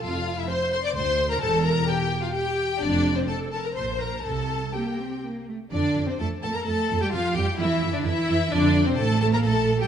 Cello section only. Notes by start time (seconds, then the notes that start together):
0.04 F2
0.96 D2
1.42 E2
2.82 F2
3.77 A#2
4.26 C3
4.75 A#3
5.00 C4
5.24 A#3
5.49 A3
5.73 D3
6.08 C3
6.20 A3
6.44 A3
6.55 A#3
6.67 A3
7.02 G3
7.13 F3
7.36 G3
7.60 E3
7.95 D3
8.06 E3
8.53 D3
8.88 C3
8.99 A3
9.22 A3
9.34 A#3
9.46 A3
9.81 G3